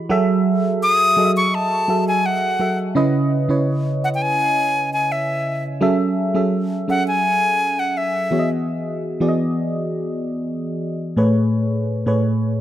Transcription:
Already playing: fm electric piano E3 E4 F#4 G4 G#4 D#5
0.10 fm electric piano F#3 F#4 G#4 A4 E5
0.83 flute D#6
1.17 fm electric piano F#3 F#4 G#4 A4 D#5
1.25 fm electric piano E5
1.37 flute C#6
1.55 flute A5
1.88 fm electric piano F#3 F#4 G#4 A4 E5
2.08 flute G#5
2.26 flute F#5
2.59 fm electric piano F#3 F#4 G#4 A4 E5
2.95 fm electric piano C#3 C#4 E4 B4 D#5
3.49 fm electric piano C#3 C#4 E4 B4 C#5
4.04 flute F#5
4.15 flute G5
4.22 flute G#5
4.93 flute G#5
5.12 flute E5
5.81 fm electric piano F#3 C#4 G#4 A4 E5
6.34 fm electric piano F#3 C#4 G#4 A4 E5
6.88 fm electric piano F#3 C#4 G#4 A4 E5, flute F#5
7.08 flute G#5
7.79 flute F#5
7.97 flute E5
8.31 fm electric piano E3 B3 F#4 G#4 C#5
8.39 fm electric piano D#5
9.20 fm electric piano E3 B3 F#4 G#4 D5
9.29 fm electric piano D#5
11.16 fm electric piano A2 A3 G#4 B4 C#5
12.06 fm electric piano A2 A3 G#4 B4 C#5

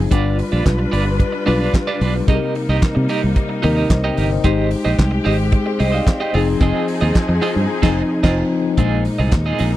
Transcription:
Already playing: tine electric piano F3 C4 D#4 G#4
0.11 fingered electric bass G1, tine electric piano G3 D4 F4 B4, string section G3 D4 F4 B4, clean electric guitar D4 F4 B4 D5, kick, closed hi-hat
0.38 muted clean electric guitar stroke, open hi-hat
0.52 fingered electric bass A#1, clean electric guitar D4 F4 B4 D5
0.65 fingered electric bass B1, muted clean electric guitar stroke, kick, snare, clap, closed hi-hat
0.79 muted clean electric guitar stroke
0.92 fingered electric bass G1, clean electric guitar D4 F4 B4 D5, open hi-hat
1.06 muted clean electric guitar stroke
1.19 muted clean electric guitar stroke, kick, closed hi-hat
1.32 muted clean electric guitar stroke
1.46 fingered electric bass B1, tine electric piano G3 D4 F4 B4, clean electric guitar D4 F4 B4 D5, open hi-hat
1.60 clean electric guitar D4 F4 B4 D5
1.74 kick, snare, clap, closed hi-hat
1.87 clean electric guitar D4 F4 B4 D5
2.01 fingered electric bass B1, clean electric guitar D4 F4 B4 D5, open hi-hat
2.15 muted clean electric guitar stroke
2.27 fingered electric bass C2, tine electric piano C3 C4 D#4 G#4, string section C3 A#3 D#4, clean electric guitar D#4 G4 A#4 D#5, kick, closed hi-hat
2.35 tine electric piano A#4
2.55 muted clean electric guitar stroke, open hi-hat
2.69 fingered electric bass C2, clean electric guitar D#4 G4 A#4 D#5
2.82 muted clean electric guitar stroke, muted fingered electric bass stroke, kick, snare, clap, closed hi-hat
2.95 fingered electric bass C3, muted clean electric guitar stroke
3.09 clean electric guitar D#4 G4 A#4 D#5, open hi-hat
3.23 fingered electric bass C2, muted clean electric guitar stroke
3.36 muted clean electric guitar stroke, kick, closed hi-hat
3.49 muted clean electric guitar stroke
3.63 fingered electric bass D#2, tine electric piano C3 C4 D#4 A#4, clean electric guitar D#4 G4 A#4 D#5, open hi-hat
3.76 clean electric guitar D#4 G4 A#4 D#5
3.90 fingered electric bass C2, tine electric piano C5 D#5, kick, snare, clap, closed hi-hat
4.04 clean electric guitar D#4 G4 A#4 D#5, tine electric piano D#5 G5
4.17 fingered electric bass G1, clean electric guitar D#4 G4 A#4 D#5, open hi-hat
4.32 tine electric piano C5 D#5
4.43 fingered electric bass G#1, string section G#3 C4 G4, tine electric piano G#3 D#4 G4 C5, clean electric guitar D#4 G4 C5 D#5, kick, closed hi-hat
4.71 muted clean electric guitar stroke, open hi-hat
4.85 fingered electric bass A#1, clean electric guitar D#4 G4 C5 D#5
4.98 fingered electric bass C2, muted clean electric guitar stroke, kick, snare, clap, closed hi-hat
5.11 muted clean electric guitar stroke
5.24 fingered electric bass G#1, clean electric guitar D#4 G4 C5 D#5, open hi-hat
5.38 muted clean electric guitar stroke
5.52 muted clean electric guitar stroke, kick, closed hi-hat
5.66 tine electric piano G#4 C5, muted clean electric guitar stroke
5.79 fingered electric bass C2, clean electric guitar D#4 G4 C5 D#5, tine electric piano C5 D#5, open hi-hat
5.92 clean electric guitar D#4 G4 C5 D#5, tine electric piano D5 F5
6.07 muted clean electric guitar stroke, kick, snare, clap, closed hi-hat
6.20 clean electric guitar D#4 G4 C5 D#5, tine electric piano D#5 G5
6.33 fingered electric bass F1, string section F3 D#4 G#4, tine electric piano F3 C4 D#4 G#4, clean electric guitar C4 F4 G#4 D#5, open hi-hat
6.48 muted clean electric guitar stroke
6.61 fingered electric bass F1, clean electric guitar C4 F4 G#4 D#5, kick, closed hi-hat
6.88 muted clean electric guitar stroke, open hi-hat
7.01 fingered electric bass D#2, clean electric guitar C4 F4 G#4 D#5
7.15 muted clean electric guitar stroke, muted fingered electric bass stroke, kick, snare, clap, closed hi-hat
7.29 fingered electric bass F2, muted clean electric guitar stroke
7.42 clean electric guitar C4 F4 G#4 D#5, open hi-hat
7.56 fingered electric bass G2, muted clean electric guitar stroke
7.82 fingered electric bass F1, tine electric piano F3 C4 D#4, clean electric guitar C4 F4 G#4 D#5, kick, snare, crash
8.23 fingered electric bass F1, tine electric piano F3 C4 D#4, clean electric guitar C4 F4 G#4 D#5, kick, snare, crash
8.77 fingered electric bass A#1, tine electric piano A#2 G#3 D4 C5, string section G#3 A#3 D#4, clean electric guitar C4 F4 G#4 D#5, kick, closed hi-hat
8.84 tine electric piano D#4
9.05 muted clean electric guitar stroke, open hi-hat
9.19 fingered electric bass C2, clean electric guitar C4 F4 G#4 D#5
9.32 fingered electric bass D#2, muted clean electric guitar stroke, kick, snare, clap, closed hi-hat
9.46 clean electric guitar C4 F4 G#4 D#5
9.59 fingered electric bass A#1, clean electric guitar C4 F4 G#4 D#5, open hi-hat
9.72 muted clean electric guitar stroke

